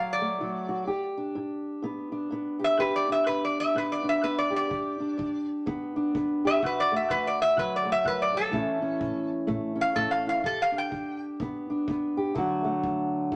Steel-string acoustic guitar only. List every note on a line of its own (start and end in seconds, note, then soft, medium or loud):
0.00 0.35 D2 medium
0.00 0.39 F#3 medium
0.00 0.20 A3 medium
0.00 0.68 F#4 medium
0.21 0.88 A3 medium
0.40 0.84 D2 medium
0.40 0.88 F#3 medium
0.69 0.86 F#4 medium
0.87 1.32 G2 medium
0.87 2.59 G4 medium
1.17 2.12 D4 medium
1.35 1.80 G2 medium
1.82 2.27 G2 medium
1.82 2.32 B3 medium
2.12 3.08 D4 medium
2.31 2.75 G2 medium
2.31 3.75 B3 medium
2.59 2.78 G4 medium
2.78 3.23 G2 medium
2.78 4.49 G4 medium
3.09 4.03 D4 medium
3.27 3.71 G2 medium
3.75 4.19 G2 medium
3.75 4.23 B3 medium
4.03 5.00 D4 medium
4.23 4.67 G2 medium
4.23 4.69 B3 medium
4.50 4.68 G4 medium
4.69 5.14 G2 medium
4.69 6.43 G4 medium
5.00 5.95 D4 medium
5.18 5.62 G2 medium
5.66 6.10 G2 medium
5.66 6.14 B3 medium
5.96 6.60 D4 medium
6.15 6.58 G2 medium
6.15 6.60 B3 medium
6.45 6.61 G4 medium
6.63 7.06 D2 medium
6.63 8.51 F#4 medium
6.92 7.84 A3 medium
7.10 7.54 D2 medium
7.56 8.01 D2 medium
7.56 8.52 F#3 medium
7.85 8.52 A3 medium
8.04 8.32 F#2 medium
8.32 8.52 G2 medium
8.51 8.96 A2 medium
8.51 10.41 E3 medium
8.51 9.46 A3 medium
8.51 8.81 C#4 medium
8.51 10.25 E4 medium
8.82 9.74 C#4 medium
9.00 9.44 A2 medium
9.47 9.92 A2 medium
9.47 9.94 A3 medium
9.76 10.41 C#4 medium
9.95 10.39 A2 medium
9.95 10.41 A3 medium
10.27 10.42 E4 medium
10.44 10.88 G2 medium
10.44 12.16 G4 medium
10.72 11.69 D4 medium
10.91 11.35 G2 medium
11.40 11.84 G2 medium
11.40 11.88 B3 medium
11.70 12.36 D4 medium
11.87 12.32 G2 medium
11.87 12.34 B3 medium
12.17 12.34 G4 medium
12.34 12.79 D2 medium
12.34 13.36 D3 medium
12.34 13.33 F#3 medium
12.34 12.64 A3 medium
12.34 13.36 F#4 medium
12.64 13.36 A3 medium
12.83 13.27 D2 medium
13.32 13.36 D2 medium